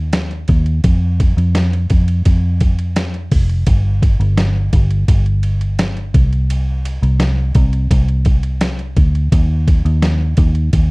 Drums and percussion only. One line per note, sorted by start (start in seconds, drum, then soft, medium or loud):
0.13 snare loud
0.13 ride medium
0.31 ride soft
0.48 kick medium
0.48 ride medium
0.66 ride soft
0.84 kick loud
0.84 ride medium
1.20 kick medium
1.20 ride medium
1.38 ride soft
1.55 snare loud
1.55 ride medium
1.73 ride soft
1.90 kick loud
1.90 ride medium
2.08 ride soft
2.25 kick medium
2.25 ride medium
2.61 kick medium
2.61 ride medium
2.79 ride medium
2.96 snare loud
2.96 ride medium
3.14 ride soft
3.32 kick medium
3.32 open hi-hat medium
3.32 ride medium
3.49 ride soft
3.67 kick loud
3.67 ride medium
4.02 kick medium
4.02 ride medium
4.21 ride soft
4.37 snare loud
4.37 ride medium
4.73 kick loud
4.73 ride medium
4.91 ride soft
5.08 kick medium
5.08 ride medium
5.26 ride soft
5.43 ride medium
5.61 ride medium
5.79 snare loud
5.79 ride medium
5.97 ride soft
6.14 kick loud
6.14 ride medium
6.33 ride soft
6.50 ride medium
6.85 ride medium
7.03 ride soft
7.20 snare loud
7.20 ride medium
7.55 kick loud
7.55 ride medium
7.73 ride soft
7.91 kick medium
7.91 ride medium
8.08 ride soft
8.25 kick medium
8.25 ride medium
8.43 ride medium
8.61 snare loud
8.61 ride medium
8.79 ride soft
8.97 kick medium
8.97 ride medium
9.15 ride soft
9.32 kick loud
9.32 ride medium
9.68 kick medium
9.68 ride medium
9.86 ride soft
10.02 snare loud
10.02 ride medium
10.37 kick loud
10.37 ride medium
10.55 ride soft
10.73 kick medium
10.73 ride medium